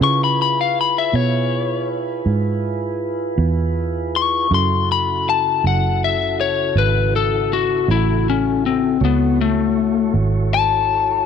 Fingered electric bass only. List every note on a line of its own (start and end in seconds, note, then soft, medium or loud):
0.01 1.10 C#3 medium
1.13 2.23 B2 medium
2.26 3.35 G#2 medium
3.38 4.47 E2 loud
4.51 5.60 F#2 medium
5.64 6.73 F#1 medium
6.75 7.85 G#1 medium
7.88 8.98 A1 loud
9.01 10.11 C#2 medium
10.14 11.23 G#1 medium